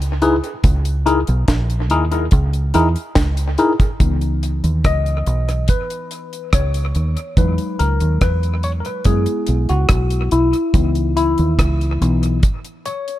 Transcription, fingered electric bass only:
0, 0, Header, 1, 2, 480
1, 0, Start_track
1, 0, Tempo, 841515
1, 364, Time_signature, 4, 2, 24, 8
1, 7525, End_track
2, 0, Start_track
2, 0, Title_t, "Fingered electric bass"
2, 0, Program_c, 0, 33
2, 0, Note_on_c, 0, 37, 86
2, 227, Note_off_c, 0, 37, 0
2, 367, Note_on_c, 0, 37, 120
2, 705, Note_off_c, 0, 37, 0
2, 734, Note_on_c, 0, 35, 104
2, 840, Note_off_c, 0, 35, 0
2, 847, Note_on_c, 0, 34, 98
2, 1091, Note_off_c, 0, 34, 0
2, 1091, Note_on_c, 0, 39, 95
2, 1312, Note_off_c, 0, 39, 0
2, 1327, Note_on_c, 0, 37, 107
2, 1550, Note_off_c, 0, 37, 0
2, 1569, Note_on_c, 0, 40, 90
2, 1681, Note_off_c, 0, 40, 0
2, 1805, Note_on_c, 0, 37, 83
2, 2029, Note_off_c, 0, 37, 0
2, 2286, Note_on_c, 0, 37, 105
2, 2625, Note_off_c, 0, 37, 0
2, 2647, Note_on_c, 0, 39, 95
2, 2757, Note_off_c, 0, 39, 0
2, 2768, Note_on_c, 0, 37, 91
2, 2991, Note_off_c, 0, 37, 0
2, 3006, Note_on_c, 0, 35, 89
2, 3230, Note_off_c, 0, 35, 0
2, 3728, Note_on_c, 0, 37, 93
2, 3951, Note_off_c, 0, 37, 0
2, 3968, Note_on_c, 0, 39, 76
2, 4082, Note_off_c, 0, 39, 0
2, 4206, Note_on_c, 0, 40, 101
2, 4320, Note_off_c, 0, 40, 0
2, 4450, Note_on_c, 0, 37, 80
2, 4563, Note_off_c, 0, 37, 0
2, 4572, Note_on_c, 0, 39, 92
2, 4681, Note_off_c, 0, 39, 0
2, 4689, Note_on_c, 0, 40, 82
2, 5028, Note_off_c, 0, 40, 0
2, 5166, Note_on_c, 0, 42, 112
2, 5281, Note_off_c, 0, 42, 0
2, 5411, Note_on_c, 0, 35, 93
2, 5524, Note_off_c, 0, 35, 0
2, 5534, Note_on_c, 0, 37, 90
2, 5642, Note_off_c, 0, 37, 0
2, 5647, Note_on_c, 0, 35, 88
2, 5872, Note_off_c, 0, 35, 0
2, 5889, Note_on_c, 0, 35, 83
2, 6003, Note_off_c, 0, 35, 0
2, 6128, Note_on_c, 0, 37, 108
2, 6468, Note_off_c, 0, 37, 0
2, 6498, Note_on_c, 0, 39, 87
2, 6605, Note_off_c, 0, 39, 0
2, 6613, Note_on_c, 0, 37, 93
2, 6835, Note_off_c, 0, 37, 0
2, 6854, Note_on_c, 0, 35, 84
2, 7076, Note_off_c, 0, 35, 0
2, 7525, End_track
0, 0, End_of_file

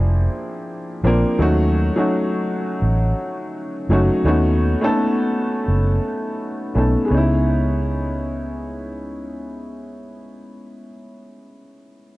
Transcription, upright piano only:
0, 0, Header, 1, 2, 480
1, 0, Start_track
1, 0, Key_signature, 4, "minor"
1, 0, Tempo, 714286
1, 933, Time_signature, 4, 2, 24, 8
1, 8178, End_track
2, 0, Start_track
2, 0, Title_t, "Upright piano"
2, 0, Program_c, 0, 0
2, 0, Control_c, 0, 64, 127
2, 0, Note_on_c, 0, 53, 70
2, 0, Note_on_c, 0, 58, 60
2, 0, Note_on_c, 0, 60, 68
2, 0, Note_on_c, 0, 62, 68
2, 0, Note_on_c, 0, 64, 76
2, 0, Note_on_c, 0, 68, 80
2, 203, Note_off_c, 0, 53, 0
2, 207, Note_off_c, 0, 58, 0
2, 210, Note_off_c, 0, 60, 0
2, 212, Note_off_c, 0, 62, 0
2, 215, Note_off_c, 0, 64, 0
2, 697, Note_on_c, 0, 53, 75
2, 702, Note_on_c, 0, 58, 77
2, 707, Note_on_c, 0, 60, 80
2, 712, Note_on_c, 0, 62, 71
2, 718, Note_on_c, 0, 70, 85
2, 911, Note_off_c, 0, 53, 0
2, 914, Note_off_c, 0, 58, 0
2, 916, Note_off_c, 0, 60, 0
2, 919, Note_off_c, 0, 62, 0
2, 922, Note_off_c, 0, 70, 0
2, 932, Note_on_c, 0, 54, 76
2, 939, Note_on_c, 0, 57, 76
2, 940, Control_c, 0, 64, 0
2, 942, Note_on_c, 0, 61, 71
2, 945, Note_off_c, 0, 68, 0
2, 949, Note_on_c, 0, 63, 78
2, 955, Note_on_c, 0, 66, 104
2, 1073, Control_c, 0, 64, 127
2, 1263, Note_off_c, 0, 54, 0
2, 1266, Note_off_c, 0, 57, 0
2, 1268, Note_off_c, 0, 61, 0
2, 1271, Note_off_c, 0, 63, 0
2, 1274, Note_off_c, 0, 66, 0
2, 1316, Note_on_c, 0, 54, 79
2, 1320, Note_on_c, 0, 57, 67
2, 1326, Note_on_c, 0, 61, 66
2, 1330, Note_on_c, 0, 63, 73
2, 1335, Note_on_c, 0, 66, 81
2, 2120, Note_off_c, 0, 54, 0
2, 2121, Note_off_c, 0, 57, 0
2, 2124, Note_off_c, 0, 61, 0
2, 2126, Note_off_c, 0, 63, 0
2, 2129, Note_off_c, 0, 66, 0
2, 2620, Note_on_c, 0, 54, 71
2, 2626, Note_on_c, 0, 57, 65
2, 2630, Note_on_c, 0, 61, 73
2, 2634, Note_on_c, 0, 63, 73
2, 2640, Note_on_c, 0, 66, 85
2, 2833, Note_off_c, 0, 54, 0
2, 2836, Note_off_c, 0, 57, 0
2, 2838, Note_off_c, 0, 61, 0
2, 2840, Note_off_c, 0, 63, 0
2, 2843, Note_off_c, 0, 66, 0
2, 2857, Note_on_c, 0, 57, 81
2, 2859, Note_on_c, 0, 59, 67
2, 2861, Control_c, 0, 64, 0
2, 2865, Note_on_c, 0, 61, 74
2, 2872, Note_on_c, 0, 63, 83
2, 2877, Note_on_c, 0, 66, 94
2, 2982, Control_c, 0, 64, 127
2, 3185, Note_off_c, 0, 57, 0
2, 3187, Note_off_c, 0, 59, 0
2, 3190, Note_off_c, 0, 61, 0
2, 3193, Note_off_c, 0, 63, 0
2, 3195, Note_off_c, 0, 66, 0
2, 3234, Note_on_c, 0, 57, 87
2, 3240, Note_on_c, 0, 59, 73
2, 3245, Note_on_c, 0, 61, 74
2, 3252, Note_on_c, 0, 63, 72
2, 3254, Note_on_c, 0, 69, 98
2, 4038, Note_off_c, 0, 57, 0
2, 4042, Note_off_c, 0, 59, 0
2, 4044, Note_off_c, 0, 61, 0
2, 4047, Note_off_c, 0, 63, 0
2, 4048, Note_off_c, 0, 69, 0
2, 4535, Note_on_c, 0, 57, 64
2, 4542, Note_on_c, 0, 59, 55
2, 4546, Note_on_c, 0, 61, 57
2, 4551, Note_on_c, 0, 63, 57
2, 4557, Note_on_c, 0, 69, 68
2, 4737, Note_on_c, 0, 56, 70
2, 4747, Note_off_c, 0, 59, 0
2, 4750, Note_off_c, 0, 57, 0
2, 4756, Note_off_c, 0, 61, 0
2, 4757, Note_on_c, 0, 59, 64
2, 4758, Note_off_c, 0, 63, 0
2, 4761, Note_off_c, 0, 69, 0
2, 4780, Note_on_c, 0, 61, 66
2, 4781, Control_c, 0, 64, 0
2, 4799, Note_on_c, 0, 63, 68
2, 4820, Note_on_c, 0, 64, 82
2, 4889, Control_c, 0, 64, 127
2, 7286, Note_off_c, 0, 56, 0
2, 7306, Note_off_c, 0, 59, 0
2, 7329, Note_off_c, 0, 61, 0
2, 7349, Note_off_c, 0, 63, 0
2, 7370, Note_off_c, 0, 64, 0
2, 8178, End_track
0, 0, End_of_file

